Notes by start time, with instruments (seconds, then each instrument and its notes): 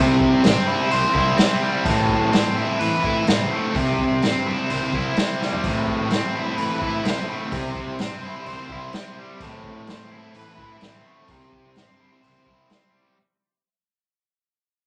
Already playing: picked electric bass C2, overdriven electric guitar C3 C4 E4
0.20 kick
0.33 picked electric bass C2
0.44 picked electric bass A1, overdriven electric guitar C4, snare, open hi-hat
0.57 picked electric bass G2
0.68 overdriven electric guitar E4
0.91 picked electric bass C2, overdriven electric guitar C5, open hi-hat
1.14 picked electric bass C2, overdriven electric guitar E4, kick
1.38 overdriven electric guitar C4, snare, open hi-hat
1.63 overdriven electric guitar G3
1.85 picked electric bass A1, overdriven electric guitar A2, kick, open hi-hat
2.09 kick
2.22 picked electric bass A1
2.32 picked electric bass A2, overdriven electric guitar C4, snare, open hi-hat
2.46 picked electric bass A1
2.57 overdriven electric guitar E4
2.80 picked electric bass A2, overdriven electric guitar B4, open hi-hat
3.03 picked electric bass A2, overdriven electric guitar E4, kick
3.27 picked electric bass A1, overdriven electric guitar C4, snare, open hi-hat
3.51 overdriven electric guitar A3
3.74 picked electric bass C2, overdriven electric guitar C3, kick, open hi-hat
3.99 kick
4.11 picked electric bass C2
4.22 picked electric bass A1, overdriven electric guitar C4, snare, open hi-hat
4.34 picked electric bass G2
4.47 overdriven electric guitar E4
4.70 picked electric bass C2, overdriven electric guitar C5, open hi-hat
4.93 picked electric bass C2, overdriven electric guitar E4, kick
5.16 overdriven electric guitar C4, snare, open hi-hat
5.42 overdriven electric guitar G3, snare
5.53 floor tom
5.64 picked electric bass A1, overdriven electric guitar A2, string section C4 A4 E5 B5, kick, open hi-hat
5.87 kick
5.99 picked electric bass A1
6.10 picked electric bass A2, overdriven electric guitar C4, snare, open hi-hat
6.23 picked electric bass A1
6.35 overdriven electric guitar E4
6.57 picked electric bass A2, overdriven electric guitar B4, open hi-hat
6.81 picked electric bass A2, overdriven electric guitar E4, kick
7.04 picked electric bass B1, overdriven electric guitar C4, snare, open hi-hat
7.28 overdriven electric guitar A3
7.52 picked electric bass C2, overdriven electric guitar C3, string section G4 E5 C6, kick, open hi-hat
7.75 kick
7.87 picked electric bass C2
7.99 picked electric bass A1, overdriven electric guitar C4, snare, open hi-hat
8.11 picked electric bass G2
8.25 overdriven electric guitar E4
8.46 picked electric bass C2, overdriven electric guitar C5, open hi-hat
8.69 picked electric bass C2, overdriven electric guitar E4, kick
8.93 overdriven electric guitar C4, snare, open hi-hat
9.19 overdriven electric guitar G3
9.40 picked electric bass A1, overdriven electric guitar A2, string section C4 A4 B5, kick, open hi-hat
9.64 kick
9.76 picked electric bass A1
9.87 picked electric bass A2, overdriven electric guitar C4, snare, open hi-hat
9.99 picked electric bass A1
10.12 overdriven electric guitar E4
10.35 picked electric bass A2, overdriven electric guitar B4, open hi-hat
10.58 picked electric bass A2, overdriven electric guitar E4, kick
10.81 picked electric bass A1, overdriven electric guitar C4, snare, open hi-hat
11.06 overdriven electric guitar A3
11.28 picked electric bass C2, overdriven electric guitar C3, string section G4 E5 C6, kick, open hi-hat
11.52 kick
11.65 picked electric bass C2
11.75 picked electric bass A1, overdriven electric guitar C4, snare, open hi-hat
11.89 picked electric bass G2
12.00 overdriven electric guitar E4
12.22 picked electric bass C2, overdriven electric guitar C5, open hi-hat
12.46 picked electric bass C2, overdriven electric guitar E4, kick
12.68 overdriven electric guitar C4, snare, open hi-hat
12.93 overdriven electric guitar G3